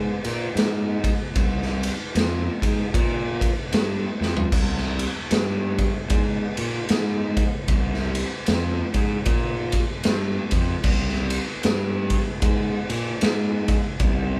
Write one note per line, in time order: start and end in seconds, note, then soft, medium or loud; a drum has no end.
0.24 0.46 A#2 medium
0.24 ride medium
0.55 1.09 G#2 medium
0.55 snare loud
0.55 ride medium
1.04 kick medium
1.04 ride medium
1.35 1.89 C2 loud
1.35 kick loud
1.35 ride loud
1.62 snare soft
1.83 ride medium
2.15 2.47 F2 loud
2.15 snare loud
2.15 ride loud
2.62 2.84 G#2 medium
2.62 kick medium
2.62 ride medium
2.94 3.47 A#2 loud
2.94 kick loud
2.94 ride loud
3.41 kick medium
3.41 ride medium
3.72 4.05 G2 medium
3.72 snare loud
3.72 ride loud
4.20 4.42 F2 medium
4.20 snare medium
4.37 floor tom medium
4.52 5.05 C2 medium
4.52 kick loud
4.52 crash loud
4.52 splash medium
4.78 snare soft
4.99 ride medium
5.31 5.84 G2 loud
5.31 snare loud
5.31 ride medium
5.78 kick medium
5.78 ride medium
6.10 6.42 G#2 loud
6.10 kick loud
6.10 ride loud
6.57 6.79 A#2 medium
6.57 ride medium
6.89 7.43 G#2 medium
6.89 snare loud
6.89 ride loud
7.37 kick medium
7.37 ride medium
7.68 8.21 C2 medium
7.68 kick loud
7.68 ride medium
7.94 snare soft
8.15 ride medium
8.46 8.79 F2 loud
8.46 snare loud
8.46 ride medium
8.94 9.16 G#2 medium
8.94 kick medium
8.94 ride medium
9.26 9.79 A#2 loud
9.26 kick loud
9.26 ride loud
9.72 kick medium
9.72 ride medium
10.03 10.37 G2 medium
10.03 snare loud
10.03 ride loud
10.51 10.74 F2 medium
10.51 kick medium
10.51 ride medium
10.83 11.37 C2 medium
10.83 kick loud
10.83 crash medium
11.09 snare soft
11.30 ride medium
11.63 12.17 G2 medium
11.63 snare loud
11.63 ride medium
12.10 kick medium
12.10 ride medium
12.42 12.74 G#2 loud
12.42 kick loud
12.42 ride loud
12.90 13.11 A#2 loud
12.90 ride medium
13.21 13.75 G#2 medium
13.21 snare loud
13.21 ride loud
13.68 kick loud
13.68 ride medium
14.00 14.40 C2 loud
14.00 kick loud
14.00 ride medium